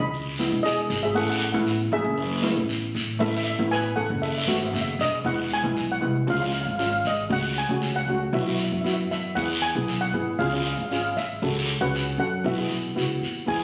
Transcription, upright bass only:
0.00 0.47 C#2 medium
0.52 0.86 E1 medium
0.90 1.16 G#1 medium
1.16 1.51 A1 loud
1.54 1.89 A1 medium
1.92 2.04 A1 medium
2.05 2.52 F#1 medium
2.56 2.91 A1 medium
2.94 3.22 A2 medium
3.21 3.55 A1 loud
3.59 3.93 A1 medium
3.97 4.09 A1 medium
4.10 4.45 F#1 medium
4.48 4.71 G#1 medium
4.73 4.97 F#1 medium
4.99 5.23 E1 medium
5.24 5.60 E1 medium
5.64 5.98 B1 medium
6.02 6.26 C2 medium
6.27 6.63 C#2 medium
6.66 7.01 G#1 medium
7.05 7.28 G#1 medium
7.30 7.66 C#2 medium
7.69 8.04 C#2 medium
8.06 8.30 C#2 medium
8.33 8.68 B1 medium
8.72 9.07 F#2 medium
9.11 9.34 F#2 medium
9.36 9.71 E2 medium
9.75 10.10 B1 loud
10.13 10.37 G#2 medium
10.39 10.74 C#2 medium
10.78 11.13 G#1 medium
11.16 11.40 G#1 medium
11.42 11.77 C#2 medium
11.81 12.16 C#2 medium
12.18 12.42 F#2 medium
12.44 12.68 B1 medium
12.71 12.94 B1 medium
12.97 13.20 C#2 medium
13.22 13.45 D#2 medium
13.48 13.64 E2 medium

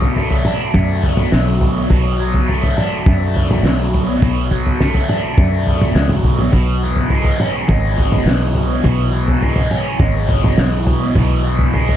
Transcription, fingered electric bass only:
0.00 0.71 B1 medium
0.75 1.29 F#2 medium
1.33 1.87 B1 loud
1.91 3.02 B1 medium
3.06 3.60 F#2 medium
3.63 4.17 B1 loud
4.22 5.33 B1 loud
5.37 5.91 F#2 medium
5.95 6.21 C#2 medium
6.23 6.50 B1 medium
6.54 7.65 B1 medium
7.69 8.22 G#1 medium
8.26 8.80 B1 loud
8.84 9.96 B1 medium
9.99 10.53 G#1 medium
10.58 11.12 B1 loud
11.15 11.97 B1 loud

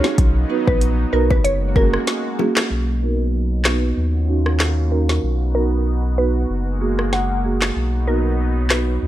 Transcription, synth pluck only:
0.67 0.76 B4 medium
1.13 1.24 A#4 medium
1.31 1.39 B4 medium
1.44 1.55 C#5 medium
1.76 1.87 A#4 medium
3.02 3.13 A#4 medium
3.65 3.85 B4 medium
4.92 5.03 A#4 medium
5.55 5.66 A#4 medium
6.18 6.37 B4 medium
7.13 7.59 F#5 medium
8.07 8.18 A#4 medium
8.71 8.90 B4 medium

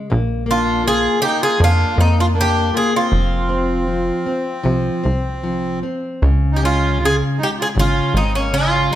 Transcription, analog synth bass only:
0.12 1.08 A#1 loud
1.60 1.85 F2 medium
1.98 2.72 F2 medium
3.12 4.11 F1 loud
4.65 4.90 C2 loud
5.05 5.82 C2 medium
6.22 7.23 C#2 loud
7.77 8.01 G#1 medium
8.14 8.89 G#1 medium

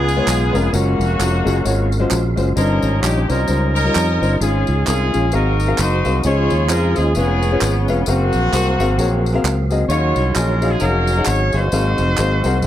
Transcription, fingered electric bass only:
0.00 0.20 C#2 loud
0.27 0.50 B1 loud
0.54 0.70 F1 medium
0.73 0.96 F#1 loud
0.99 1.16 F1 loud
1.19 1.42 F1 loud
1.46 1.62 F#1 loud
1.65 2.04 G#1 medium
2.11 2.34 A#1 loud
2.37 2.54 F#1 loud
2.57 2.79 G1 loud
2.83 3.00 G#1 loud
3.02 3.25 A#1 loud
3.30 3.46 C2 loud
3.49 3.88 C#2 medium
3.96 4.18 F2 loud
4.22 4.38 G1 loud
4.41 4.63 G#1 loud
4.68 4.84 C#2 loud
4.88 5.10 C2 loud
5.15 5.31 A#1 medium
5.34 5.72 G#1 loud
5.79 6.01 F#1 loud
6.05 6.22 C2 medium
6.25 6.47 C#2 loud
6.52 6.71 D#2 loud
6.71 6.93 F2 loud
6.98 7.14 D#2 medium
7.17 7.55 F1 loud
7.61 7.89 G#1 loud
7.89 8.05 F1 loud
8.08 8.30 F#1 loud
8.34 8.50 A#1 medium
8.53 8.75 C2 loud
8.79 8.95 G#1 medium
8.98 9.37 A#1 loud
9.44 9.83 C#2 loud
9.88 10.11 D#2 loud
10.16 10.33 C2 loud
10.36 10.74 A#1 loud
10.82 11.20 F1 loud
11.27 11.49 G#1 loud
11.54 11.70 G1 loud
11.72 11.95 G#1 loud
11.99 12.15 F1 loud
12.19 12.41 G#1 medium
12.45 12.61 C2 loud
12.63 12.67 G#1 loud

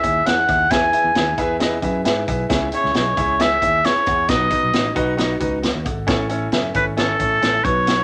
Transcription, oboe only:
0.00 0.28 E5 medium
0.27 0.72 F#5 medium
0.71 1.38 G#5 loud
2.75 2.94 C#5 medium
2.97 3.43 C#5 medium
3.41 3.87 E5 loud
3.85 4.30 C#5 loud
4.29 4.96 D#5 medium
6.76 6.86 B4 medium
6.98 7.66 A4 medium
7.64 8.04 C#5 loud

